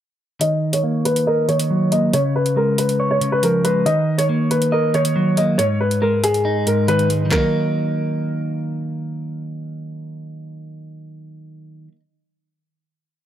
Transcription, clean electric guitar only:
0, 0, Header, 1, 2, 480
1, 0, Start_track
1, 0, Key_signature, -6, "minor"
1, 0, Tempo, 431655
1, 455, Time_signature, 4, 2, 24, 8
1, 14734, End_track
2, 0, Start_track
2, 0, Title_t, "Clean electric guitar"
2, 0, Program_c, 0, 27
2, 450, Note_on_c, 0, 51, 88
2, 928, Note_on_c, 0, 58, 82
2, 1414, Note_on_c, 0, 75, 99
2, 1637, Note_off_c, 0, 51, 0
2, 1650, Note_on_c, 0, 51, 74
2, 1894, Note_on_c, 0, 54, 84
2, 2118, Note_off_c, 0, 58, 0
2, 2132, Note_on_c, 0, 58, 75
2, 2369, Note_off_c, 0, 51, 0
2, 2373, Note_off_c, 0, 58, 0
2, 2374, Note_off_c, 0, 54, 0
2, 2374, Note_off_c, 0, 75, 0
2, 2374, Note_on_c, 0, 49, 93
2, 2848, Note_on_c, 0, 56, 81
2, 3333, Note_on_c, 0, 73, 101
2, 3554, Note_off_c, 0, 49, 0
2, 3568, Note_on_c, 0, 49, 75
2, 3814, Note_on_c, 0, 53, 85
2, 4045, Note_off_c, 0, 56, 0
2, 4058, Note_on_c, 0, 56, 80
2, 4288, Note_off_c, 0, 53, 0
2, 4291, Note_off_c, 0, 49, 0
2, 4292, Note_on_c, 0, 51, 93
2, 4294, Note_off_c, 0, 73, 0
2, 4296, Note_off_c, 0, 56, 0
2, 4772, Note_on_c, 0, 58, 82
2, 5250, Note_on_c, 0, 75, 92
2, 5479, Note_off_c, 0, 51, 0
2, 5493, Note_on_c, 0, 51, 74
2, 5735, Note_on_c, 0, 54, 87
2, 5959, Note_off_c, 0, 58, 0
2, 5972, Note_on_c, 0, 58, 77
2, 6208, Note_off_c, 0, 51, 0
2, 6212, Note_off_c, 0, 75, 0
2, 6212, Note_on_c, 0, 44, 87
2, 6213, Note_off_c, 0, 58, 0
2, 6215, Note_off_c, 0, 54, 0
2, 6693, Note_on_c, 0, 56, 82
2, 7171, Note_on_c, 0, 63, 96
2, 7402, Note_off_c, 0, 44, 0
2, 7415, Note_on_c, 0, 44, 79
2, 7651, Note_on_c, 0, 51, 91
2, 7880, Note_off_c, 0, 56, 0
2, 7894, Note_on_c, 0, 56, 75
2, 8054, Note_off_c, 0, 51, 0
2, 8067, Note_on_c, 0, 51, 81
2, 8108, Note_off_c, 0, 56, 0
2, 8112, Note_on_c, 0, 54, 75
2, 8133, Note_off_c, 0, 63, 0
2, 8135, Note_off_c, 0, 44, 0
2, 8157, Note_on_c, 0, 58, 76
2, 8201, Note_on_c, 0, 63, 91
2, 13205, Note_off_c, 0, 51, 0
2, 13250, Note_off_c, 0, 54, 0
2, 13295, Note_off_c, 0, 58, 0
2, 13339, Note_off_c, 0, 63, 0
2, 14734, End_track
0, 0, End_of_file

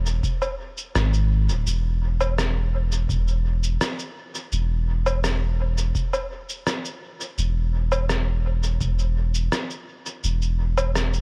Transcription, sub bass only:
0, 0, Header, 1, 2, 480
1, 0, Start_track
1, 0, Tempo, 714286
1, 1119, Time_signature, 4, 2, 24, 8
1, 7533, End_track
2, 0, Start_track
2, 0, Title_t, "Sub bass"
2, 0, Program_c, 0, 38
2, 0, Note_on_c, 0, 28, 102
2, 135, Note_off_c, 0, 28, 0
2, 639, Note_on_c, 0, 32, 87
2, 1000, Note_on_c, 0, 26, 85
2, 1010, Note_off_c, 0, 32, 0
2, 1105, Note_off_c, 0, 26, 0
2, 1118, Note_on_c, 0, 28, 101
2, 2056, Note_off_c, 0, 28, 0
2, 2078, Note_on_c, 0, 28, 86
2, 2536, Note_off_c, 0, 28, 0
2, 3039, Note_on_c, 0, 28, 100
2, 3976, Note_off_c, 0, 28, 0
2, 4959, Note_on_c, 0, 28, 102
2, 5896, Note_off_c, 0, 28, 0
2, 5918, Note_on_c, 0, 28, 87
2, 6375, Note_off_c, 0, 28, 0
2, 6880, Note_on_c, 0, 28, 101
2, 7533, Note_off_c, 0, 28, 0
2, 7533, End_track
0, 0, End_of_file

